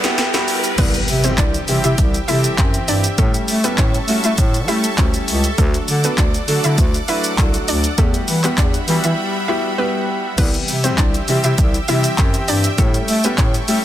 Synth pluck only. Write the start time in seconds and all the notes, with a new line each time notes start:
0.78 B3 B4
1.24 C4 C5
1.38 D4 D5
1.84 E4 E5
2.28 E4 E5
2.88 D4 D5
3.18 A3 A4
3.64 B3 B4
3.79 C#4 C#5
4.24 E4 E5
4.68 E4 E5
4.98 C#4 C#5
5.58 A3 A4
6.05 B3 B4
6.18 D4 D5
6.64 E4 E5
7.08 E4 E5
7.68 D4 D5
7.98 A3 A4
8.44 B3 B4
8.58 D4 D5
9.04 E4 E5
9.48 E4 E5
9.78 B3 B4
10.38 B3 B4
10.84 C4 C5
10.98 D4 D5
11.44 E4 E5
11.88 E4 E5
12.48 D4 D5
12.78 A3 A4
13.24 B3 B4
13.38 C#4 C#5